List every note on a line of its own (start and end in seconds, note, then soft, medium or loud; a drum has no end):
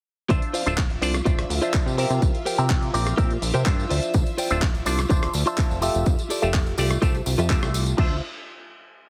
0.29 0.40 D2 loud
0.29 0.61 D4 loud
0.29 0.42 F4 loud
0.29 0.61 F4 loud
0.29 7.99 F4 medium
0.29 0.42 C5 loud
0.29 0.62 C5 medium
0.29 0.42 D5 loud
0.29 0.62 E5 loud
0.29 7.99 E5 medium
0.29 0.43 E5 loud
0.29 kick loud
0.29 closed hi-hat medium
0.29 tambourine soft
0.42 closed hi-hat soft
0.53 0.72 F4 medium
0.53 0.72 C5 medium
0.53 0.72 D5 medium
0.53 0.73 F5 loud
0.53 open hi-hat loud
0.53 tambourine medium
0.66 0.98 D1 medium
0.66 0.80 D4 medium
0.66 0.80 F4 medium
0.66 0.80 C5 medium
0.66 0.81 E5 loud
0.66 closed hi-hat medium
0.66 tambourine soft
0.77 kick loud
0.77 clap loud
0.77 closed hi-hat medium
0.77 tambourine soft
0.90 muted clean electric guitar stroke soft
0.90 closed hi-hat soft
1.01 1.21 C2 medium
1.01 1.16 D4 loud
1.01 1.17 F4 medium
1.01 1.17 C5 medium
1.01 1.17 D5 loud
1.01 muted clean electric guitar stroke soft
1.01 open hi-hat loud
1.01 tambourine medium
1.14 cross-stick medium
1.14 closed hi-hat medium
1.14 tambourine soft
1.25 1.45 D1 loud
1.25 1.49 D4 medium
1.25 1.44 F4 medium
1.25 1.49 F4 medium
1.25 1.44 C5 medium
1.25 1.49 C5 medium
1.25 1.49 D5 medium
1.25 1.44 D5 medium
1.25 1.45 E5 loud
1.25 kick loud
1.25 closed hi-hat medium
1.25 tambourine soft
1.39 cross-stick medium
1.39 closed hi-hat soft
1.50 1.60 D2 medium
1.50 open hi-hat loud
1.50 tambourine medium
1.61 1.95 D4 medium
1.61 1.92 F4 medium
1.61 1.95 F4 medium
1.61 1.92 C5 medium
1.61 1.95 C5 medium
1.61 1.92 D5 medium
1.61 1.95 E5 medium
1.61 1.92 E5 medium
1.61 closed hi-hat medium
1.61 tambourine soft
1.74 kick loud
1.74 clap loud
1.74 closed hi-hat medium
1.74 tambourine soft
1.86 2.05 C3 loud
1.86 tambourine soft
1.97 2.21 C4 loud
1.97 2.36 G4 medium
1.97 2.21 G4 medium
1.97 2.37 A#4 medium
1.97 2.21 A#4 medium
1.97 2.37 C5 medium
1.97 2.21 E5 loud
1.97 2.37 E5 medium
1.97 open hi-hat loud
1.97 tambourine medium
2.10 2.20 C3 medium
2.10 closed hi-hat medium
2.10 tambourine soft
2.22 2.32 C2 loud
2.22 kick loud
2.22 closed hi-hat medium
2.22 tambourine soft
2.35 closed hi-hat soft
2.45 2.64 G4 medium
2.45 2.64 A#4 medium
2.45 2.64 C5 medium
2.45 2.65 G5 loud
2.45 open hi-hat loud
2.45 tambourine medium
2.58 2.90 C3 medium
2.58 2.91 C4 loud
2.58 2.91 G4 medium
2.58 2.91 A#4 medium
2.58 2.91 E5 loud
2.58 closed hi-hat medium
2.58 tambourine soft
2.70 kick loud
2.70 clap loud
2.70 closed hi-hat medium
2.70 tambourine soft
2.82 muted clean electric guitar stroke soft
2.82 closed hi-hat soft
2.93 3.13 A#1 medium
2.93 3.14 C4 medium
2.93 3.14 G4 medium
2.93 3.15 A#4 medium
2.93 3.15 D5 loud
2.93 muted clean electric guitar stroke soft
2.93 open hi-hat loud
2.93 tambourine medium
3.07 cross-stick medium
3.07 closed hi-hat medium
3.07 tambourine soft
3.17 3.38 A#2 loud
3.17 3.32 C4 loud
3.17 3.36 G4 medium
3.17 3.33 G4 medium
3.17 3.36 A#4 medium
3.17 3.33 A#4 medium
3.17 3.36 C5 medium
3.17 3.33 E5 loud
3.17 3.37 E5 loud
3.17 kick loud
3.17 closed hi-hat medium
3.17 tambourine soft
3.31 closed hi-hat soft
3.42 3.52 A#1 medium
3.42 open hi-hat loud
3.42 tambourine medium
3.54 3.64 C3 loud
3.54 3.84 G4 medium
3.54 3.84 A#4 medium
3.54 3.84 C5 medium
3.54 3.85 G5 loud
3.54 closed hi-hat medium
3.54 tambourine soft
3.65 3.86 G2 medium
3.65 4.47 D4 medium
3.65 4.47 F4 medium
3.65 4.48 C5 medium
3.65 4.48 E5 loud
3.65 kick loud
3.65 clap loud
3.65 closed hi-hat medium
3.65 tambourine soft
3.79 tambourine soft
3.89 4.00 D2 medium
3.89 4.28 F4 medium
3.89 4.29 C5 medium
3.89 4.29 D5 medium
3.89 4.29 E5 loud
3.89 open hi-hat loud
3.89 tambourine medium
4.03 closed hi-hat medium
4.03 tambourine soft
4.14 4.24 D2 loud
4.14 kick loud
4.14 closed hi-hat medium
4.14 tambourine medium
4.14 tambourine soft
4.26 closed hi-hat soft
4.26 tambourine soft
4.37 4.56 F4 medium
4.37 4.56 C5 medium
4.37 4.56 D5 medium
4.37 4.57 G5 medium
4.37 open hi-hat loud
4.37 tambourine loud
4.37 tambourine medium
4.50 4.83 D1 medium
4.50 4.64 D4 loud
4.50 4.64 F4 medium
4.50 4.65 C5 medium
4.50 4.65 E5 loud
4.50 closed hi-hat medium
4.50 tambourine soft
4.62 kick loud
4.62 clap loud
4.62 closed hi-hat medium
4.62 tambourine medium
4.62 tambourine soft
4.74 muted clean electric guitar stroke soft
4.74 closed hi-hat soft
4.74 tambourine soft
4.85 5.05 C2 medium
4.85 5.00 D4 loud
4.85 5.01 F4 medium
4.85 5.01 C5 medium
4.85 5.01 D5 loud
4.85 muted clean electric guitar stroke soft
4.85 open hi-hat loud
4.85 tambourine medium
4.99 cross-stick medium
4.99 closed hi-hat medium
4.99 tambourine soft
5.09 5.30 D1 loud
5.09 5.33 D4 medium
5.09 5.28 F4 medium
5.09 5.33 F4 medium
5.09 5.28 C5 medium
5.09 5.33 C5 medium
5.09 5.28 D5 medium
5.09 5.33 D5 medium
5.09 5.29 E5 loud
5.09 kick loud
5.09 closed hi-hat medium
5.09 tambourine medium
5.09 tambourine soft
5.22 cross-stick medium
5.22 closed hi-hat soft
5.22 tambourine soft
5.33 5.44 D2 medium
5.33 open hi-hat loud
5.33 tambourine loud
5.35 tambourine medium
5.46 5.79 D4 medium
5.46 5.76 F4 medium
5.46 5.79 F4 medium
5.46 5.76 C5 medium
5.46 5.80 C5 medium
5.46 5.76 D5 medium
5.46 5.77 E5 loud
5.46 5.80 E5 medium
5.46 closed hi-hat medium
5.46 tambourine soft
5.58 kick loud
5.58 clap loud
5.58 closed hi-hat medium
5.58 tambourine medium
5.58 tambourine soft
5.71 5.90 F1 loud
5.71 tambourine soft
5.81 6.05 A3 medium
5.81 6.20 F4 loud
5.81 6.05 F4 medium
5.81 6.21 G4 medium
5.81 6.05 G4 medium
5.81 6.21 A4 medium
5.81 6.05 E5 loud
5.81 6.21 E5 loud
5.81 open hi-hat loud
5.81 tambourine medium
5.95 6.04 F1 medium
5.95 closed hi-hat medium
5.95 tambourine soft
6.06 6.16 F2 loud
6.06 kick loud
6.06 closed hi-hat medium
6.06 tambourine medium
6.06 tambourine soft
6.18 closed hi-hat soft
6.18 tambourine soft
6.30 6.48 F4 medium
6.30 6.48 G4 medium
6.30 6.48 A4 medium
6.30 6.49 D5 medium
6.30 open hi-hat loud
6.30 tambourine loud
6.30 tambourine medium
6.42 6.75 F1 medium
6.42 6.75 A3 medium
6.42 6.75 F4 medium
6.42 6.75 G4 medium
6.42 6.75 E5 loud
6.42 closed hi-hat medium
6.42 tambourine soft
6.54 kick loud
6.54 clap loud
6.54 closed hi-hat medium
6.54 tambourine medium
6.54 tambourine soft
6.66 muted clean electric guitar stroke soft
6.66 closed hi-hat soft
6.66 tambourine soft
6.78 6.97 C2 medium
6.78 6.98 A3 medium
6.78 6.98 F4 medium
6.78 6.99 G4 medium
6.78 6.99 D5 loud
6.78 muted clean electric guitar stroke soft
6.78 open hi-hat loud
6.78 tambourine medium
6.90 cross-stick medium
6.90 closed hi-hat medium
6.90 tambourine soft
7.02 7.22 C2 loud
7.02 7.16 A3 loud
7.02 7.20 F4 medium
7.02 7.17 F4 medium
7.02 7.17 G4 medium
7.02 7.20 G4 medium
7.02 7.21 A4 medium
7.02 7.21 C5 loud
7.02 7.17 E5 loud
7.02 kick loud
7.02 closed hi-hat medium
7.02 tambourine medium
7.02 tambourine soft
7.15 closed hi-hat soft
7.15 tambourine soft
7.26 7.36 C2 medium
7.26 open hi-hat loud
7.26 tambourine medium
7.38 7.57 F2 medium
7.38 7.68 F4 medium
7.38 7.68 G4 medium
7.38 7.68 A4 medium
7.38 7.69 E5 loud
7.38 closed hi-hat medium
7.38 tambourine soft
7.50 7.96 A3 medium
7.50 7.97 F4 medium
7.50 7.97 G4 medium
7.50 7.97 E5 loud
7.50 kick loud
7.50 clap loud
7.50 closed hi-hat medium
7.50 tambourine medium
7.50 tambourine soft
7.62 7.94 C2 medium
7.62 cross-stick medium
7.62 tambourine soft
7.74 open hi-hat loud
7.74 tambourine loud
7.74 tambourine medium
7.86 closed hi-hat medium
7.86 tambourine soft
7.97 8.20 D2 loud
7.97 8.16 D4 medium
7.97 8.16 F4 medium
7.97 8.21 F4 medium
7.97 8.20 C5 medium
7.97 8.16 C5 medium
7.97 8.21 E5 medium
7.97 8.17 E5 loud
7.97 kick loud
7.97 crash medium